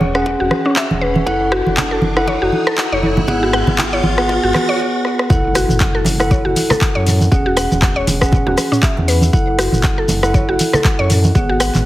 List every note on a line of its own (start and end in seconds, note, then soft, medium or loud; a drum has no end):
0.00 0.35 E1 medium
0.00 0.12 C#4 medium
0.00 0.12 G#4 medium
0.00 0.12 F#5 loud
0.00 riser medium
0.00 high conga loud
0.15 1.24 C#4 medium
0.15 1.24 G#4 medium
0.15 1.24 F#5 loud
0.15 cross-stick medium
0.26 kick loud
0.26 mid tom loud
0.40 0.49 E1 loud
0.40 0.46 F#4 medium
0.51 cross-stick medium
0.51 high conga medium
0.65 0.72 C#4 medium
0.65 mid tom medium
0.76 0.89 E5 loud
0.76 kick loud
0.76 clap loud
0.91 1.23 E1 loud
0.91 high conga loud
1.01 1.14 B4 medium
1.16 high conga medium
1.27 1.62 F#1 loud
1.27 2.13 E4 medium
1.27 2.13 A4 medium
1.27 2.13 F#5 loud
1.27 kick loud
1.52 1.65 F#4 loud
1.52 cross-stick medium
1.66 1.99 F#1 medium
1.66 high conga medium
1.77 1.90 F#5 medium
1.77 kick loud
1.77 clap loud
1.77 low conga loud
1.91 2.01 A4 medium
2.02 2.37 F#1 medium
2.02 high conga loud
2.17 3.26 E4 loud
2.17 3.26 A4 medium
2.17 3.26 F#5 loud
2.17 cross-stick medium
2.27 2.35 C#5 medium
2.27 kick loud
2.27 high conga medium
2.42 2.50 F#1 loud
2.42 2.52 F#4 medium
2.52 high conga medium
2.67 2.77 A4 loud
2.67 cross-stick medium
2.78 2.91 F#5 medium
2.78 kick loud
2.78 clap loud
2.92 3.25 F#1 loud
2.92 2.98 C#5 loud
3.03 high conga medium
3.17 high conga medium
3.17 low conga medium
3.28 3.63 G#1 loud
3.28 4.15 B3 medium
3.28 4.15 G#4 medium
3.28 4.15 F#5 loud
3.28 kick loud
3.28 low conga medium
3.43 3.49 F#4 medium
3.53 3.67 F#5 loud
3.53 cross-stick medium
3.67 4.01 G#1 medium
3.67 mid tom medium
3.67 high conga medium
3.67 low conga medium
3.78 3.92 F#5 medium
3.78 kick loud
3.78 clap loud
3.78 low conga loud
3.93 4.03 C#5 loud
4.03 4.39 G#1 medium
4.03 high conga loud
4.18 5.27 B3 loud
4.18 5.27 G#4 medium
4.18 5.27 F#5 loud
4.18 kick medium
4.18 cross-stick medium
4.29 kick loud
4.29 mid tom loud
4.43 4.52 G#1 loud
4.43 4.50 F#4 medium
4.54 cross-stick medium
4.54 clap soft
4.54 high conga medium
4.69 4.75 C#5 medium
4.69 mid tom medium
5.05 cross-stick medium
5.19 cross-stick medium
5.30 5.65 F#1 loud
5.30 6.17 E4 medium
5.30 6.17 A4 medium
5.30 6.17 F#5 loud
5.30 kick loud
5.30 impact medium
5.30 shekere soft
5.55 5.68 F#4 loud
5.55 cross-stick medium
5.55 open hi-hat loud
5.55 shekere loud
5.69 6.02 F#1 medium
5.69 mid tom medium
5.69 high conga medium
5.69 shekere medium
5.80 5.94 F#5 medium
5.80 kick loud
5.80 clap loud
5.80 shekere soft
5.95 6.05 A4 medium
6.05 6.41 F#1 medium
6.05 open hi-hat medium
6.05 high conga loud
6.05 low conga medium
6.05 shekere loud
6.20 7.29 E4 loud
6.20 7.29 A4 medium
6.20 7.29 F#5 loud
6.20 cross-stick loud
6.20 shekere soft
6.30 6.39 C#5 medium
6.30 kick loud
6.30 high conga medium
6.30 shekere soft
6.45 6.54 F#1 loud
6.45 6.56 F#4 medium
6.56 open hi-hat loud
6.56 high conga medium
6.56 shekere medium
6.70 6.80 A4 loud
6.70 cross-stick loud
6.70 low conga loud
6.70 shekere soft
6.81 6.94 F#5 medium
6.81 kick loud
6.81 clap loud
6.95 7.29 F#2 loud
6.95 7.01 C#5 loud
7.07 mid tom medium
7.07 open hi-hat medium
7.07 high conga medium
7.07 shekere medium
7.21 high conga medium
7.21 shekere medium
7.32 7.67 E1 loud
7.32 8.18 C#4 loud
7.32 8.18 G#4 medium
7.32 8.18 F#5 loud
7.32 kick loud
7.32 shekere soft
7.46 7.52 F#4 medium
7.57 7.70 F#5 loud
7.57 cross-stick loud
7.57 open hi-hat loud
7.57 shekere loud
7.71 8.04 E1 medium
7.71 high conga loud
7.71 shekere medium
7.82 7.95 F#5 medium
7.82 kick loud
7.82 clap loud
7.82 shekere soft
7.96 8.06 C#5 loud
8.07 8.42 E1 medium
8.07 open hi-hat loud
8.07 high conga loud
8.07 low conga medium
8.07 shekere medium
8.21 9.31 C#4 loud
8.21 9.31 G#4 medium
8.21 9.31 F#5 loud
8.21 kick medium
8.21 cross-stick loud
8.21 shekere medium
8.32 kick loud
8.32 mid tom medium
8.32 low conga medium
8.32 shekere soft
8.47 8.56 E1 loud
8.47 8.53 F#4 medium
8.47 low conga loud
8.57 cross-stick medium
8.57 open hi-hat loud
8.57 high conga medium
8.57 shekere loud
8.72 8.78 C#4 medium
8.72 mid tom medium
8.72 shekere medium
8.83 8.96 E5 loud
8.83 kick loud
8.83 clap loud
8.83 shekere soft
8.97 9.30 E2 loud
8.97 high conga loud
8.97 low conga medium
9.08 9.21 B4 medium
9.08 open hi-hat medium
9.08 shekere medium
9.21 high conga medium
9.21 shekere medium
9.33 9.68 F#1 loud
9.33 10.20 E4 loud
9.33 10.20 A4 medium
9.33 10.20 F#5 loud
9.33 kick loud
9.33 shekere soft
9.59 9.72 F#4 loud
9.59 cross-stick loud
9.59 open hi-hat medium
9.59 shekere loud
9.72 10.06 F#1 medium
9.72 mid tom medium
9.72 high conga loud
9.72 shekere medium
9.84 9.97 F#5 medium
9.84 kick loud
9.84 clap loud
9.84 shekere soft
9.98 10.08 A4 medium
10.08 10.44 F#1 medium
10.08 open hi-hat medium
10.08 high conga loud
10.08 low conga medium
10.08 shekere medium
10.23 11.32 E4 loud
10.23 11.32 A4 medium
10.23 11.32 F#5 loud
10.23 cross-stick loud
10.23 shekere medium
10.34 10.42 C#5 medium
10.34 kick loud
10.34 high conga medium
10.34 shekere soft
10.48 10.57 F#1 loud
10.48 10.59 F#4 medium
10.59 open hi-hat loud
10.59 high conga medium
10.59 shekere loud
10.73 10.84 A4 loud
10.73 cross-stick loud
10.73 low conga loud
10.73 shekere medium
10.84 10.98 F#5 medium
10.84 kick loud
10.84 clap loud
10.84 shekere soft
10.99 11.32 F#2 loud
10.99 11.05 C#5 loud
11.10 mid tom medium
11.10 open hi-hat medium
11.10 high conga medium
11.10 shekere loud
11.24 high conga loud
11.24 shekere medium
11.35 11.70 G#1 loud
11.35 11.86 B3 medium
11.35 11.86 G#4 medium
11.35 11.86 F#5 loud
11.35 kick loud
11.35 shekere soft
11.49 11.55 F#4 medium
11.60 11.73 F#5 loud
11.60 cross-stick loud
11.60 open hi-hat medium
11.60 shekere loud
11.74 11.86 G#1 medium
11.74 clap soft
11.74 mid tom medium
11.74 high conga medium
11.74 shekere medium